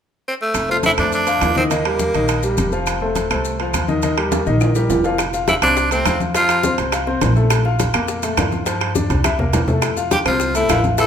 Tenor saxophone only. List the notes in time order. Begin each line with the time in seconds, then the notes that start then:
0.28 C4
0.42 A3
0.71 F4
0.86 E4
0.99 D4
1.14 D4
1.57 C4
1.71 A#3
5.49 E4
5.63 D4
5.92 C4
6.36 F4
10.12 G4
10.27 F4
10.56 E4
11.00 A4